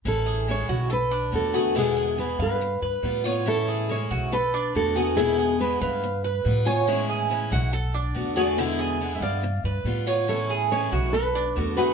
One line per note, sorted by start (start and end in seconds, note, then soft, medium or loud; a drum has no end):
0.05 0.65 A1 medium
0.05 0.46 E3 medium
0.05 0.48 C#4 medium
0.05 0.48 E4 medium
0.05 0.51 A4 medium
0.26 0.68 G#4 medium
0.48 0.89 E3 soft
0.48 0.90 G#3 soft
0.48 0.90 C#4 soft
0.48 0.90 E4 soft
0.48 0.92 C#5 medium
0.69 1.29 B1 medium
0.69 0.90 F#4 medium
0.90 1.11 A4 medium
0.90 1.35 B4 medium
0.90 muted steel-string acoustic guitar stroke medium
1.11 1.53 D4 medium
1.32 2.34 E2 medium
1.32 1.53 D3 soft
1.32 1.54 A3 soft
1.32 1.53 B3 soft
1.32 1.52 F#4 soft
1.32 1.74 A4 medium
1.54 1.74 D3 medium
1.54 1.76 A3 medium
1.54 1.75 B3 medium
1.54 1.75 F#4 medium
1.54 1.75 G#4 medium
1.75 2.17 B2 medium
1.75 2.17 D3 medium
1.75 2.17 G#3 medium
1.75 2.18 B3 medium
1.75 1.96 E4 medium
1.75 2.18 E4 medium
1.75 2.17 G#4 medium
1.97 2.39 G#4 medium
2.18 2.60 D3 soft
2.18 2.61 G#3 soft
2.18 2.60 B3 soft
2.18 2.61 E4 soft
2.18 2.41 B4 medium
2.39 2.79 G2 medium
2.39 3.23 B4 medium
2.39 2.81 F5 medium
2.61 muted steel-string acoustic guitar stroke medium
2.82 3.02 G2 medium
2.82 3.24 B4 medium
3.03 4.04 A2 medium
3.03 3.24 G3 soft
3.03 3.25 B3 soft
3.03 3.23 F4 medium
3.24 3.46 B3 medium
3.24 3.45 F4 medium
3.24 3.67 C#5 medium
3.46 3.88 E3 medium
3.46 3.89 C#4 medium
3.46 3.89 E4 medium
3.46 3.87 A4 medium
3.68 4.10 G#4 medium
3.89 4.31 E3 soft
3.89 4.31 G#3 soft
3.89 4.32 C#4 medium
3.89 4.32 E4 medium
3.89 4.32 C#5 medium
4.11 4.71 B1 medium
4.11 4.32 F#4 medium
4.32 4.53 A4 medium
4.32 4.76 B4 medium
4.32 muted steel-string acoustic guitar stroke medium
4.54 4.95 D4 medium
4.75 5.76 E2 medium
4.75 4.95 D3 soft
4.75 4.95 A3 soft
4.75 4.95 B3 soft
4.75 4.94 F#4 soft
4.75 5.15 A4 medium
4.96 5.17 D3 medium
4.96 5.17 A3 medium
4.96 5.17 B3 medium
4.96 5.16 F#4 medium
4.96 5.16 G#4 medium
5.17 5.59 B2 medium
5.17 5.59 D3 medium
5.17 5.59 G#3 medium
5.17 5.60 B3 medium
5.17 5.38 E4 medium
5.17 5.60 E4 medium
5.17 5.60 G#4 medium
5.39 5.80 G#4 medium
5.60 6.02 D3 soft
5.60 6.02 G#3 soft
5.60 6.03 B3 soft
5.60 6.03 E4 soft
5.60 5.80 B4 medium
5.81 6.41 G2 medium
5.81 6.66 B4 medium
5.81 6.23 F5 medium
6.03 muted steel-string acoustic guitar stroke medium
6.24 6.66 B4 medium
6.45 7.46 A2 medium
6.45 6.66 G3 soft
6.45 6.66 B3 soft
6.45 6.64 F4 soft
6.65 6.87 B3 medium
6.65 6.87 F4 medium
6.65 7.08 C#5 medium
6.65 7.26 G#5 loud
6.87 7.29 E3 medium
6.87 7.29 G#3 medium
6.87 7.30 C#4 medium
6.87 7.30 E4 medium
7.10 7.51 G#4 medium
7.30 7.72 E3 soft
7.30 7.72 G#3 soft
7.30 7.73 C#4 soft
7.30 7.73 E4 medium
7.51 8.12 B1 medium
7.51 7.73 F#4 medium
7.51 8.36 F#5 medium
7.73 7.94 A4 medium
7.73 muted steel-string acoustic guitar stroke medium
7.94 8.36 D4 medium
8.14 9.16 E2 medium
8.14 8.36 D3 soft
8.14 8.36 A3 soft
8.14 8.35 B3 soft
8.14 8.35 F#4 soft
8.36 8.57 D3 medium
8.36 8.58 A3 medium
8.36 8.57 B3 medium
8.36 8.57 F#4 medium
8.36 8.58 G#4 medium
8.36 9.14 D5 medium
8.58 9.00 B2 medium
8.58 9.00 D3 medium
8.58 9.00 G#3 medium
8.58 9.01 B3 medium
8.58 8.79 E4 medium
8.58 9.01 E4 medium
8.79 9.21 G#4 medium
9.01 9.43 D3 soft
9.01 9.43 G#3 soft
9.01 9.43 B3 medium
9.01 9.44 E4 medium
9.15 9.22 E5 medium
9.20 9.61 G2 medium
9.20 9.83 D5 medium
9.20 9.64 F5 medium
9.43 muted steel-string acoustic guitar stroke medium
9.64 9.84 G2 medium
9.64 10.06 B4 medium
9.84 10.86 A2 medium
9.84 10.06 G3 soft
9.84 10.07 B3 soft
9.84 10.06 F4 medium
10.07 10.28 B3 medium
10.07 10.28 F4 medium
10.07 10.49 C#5 medium
10.28 10.70 E3 medium
10.28 10.71 C#4 medium
10.28 10.71 E4 medium
10.28 10.71 A4 medium
10.50 10.91 G#4 medium
10.71 11.13 E3 soft
10.71 11.13 G#3 medium
10.71 11.14 C#4 medium
10.71 11.14 E4 soft
10.71 11.11 C#5 medium
10.92 11.52 B1 medium
10.92 11.13 F#4 medium
11.13 11.35 A4 medium
11.13 11.64 B4 medium
11.13 muted steel-string acoustic guitar stroke medium
11.35 11.77 D4 medium
11.56 11.94 E2 medium
11.56 11.77 D3 soft
11.56 11.77 A3 soft
11.56 11.77 B3 soft
11.56 11.76 F#4 medium
11.64 11.75 A4 medium
11.77 11.94 D3 medium
11.77 11.94 A3 medium
11.77 11.94 B3 medium
11.77 11.94 F#4 medium
11.77 11.94 G#4 medium
11.77 11.94 B4 medium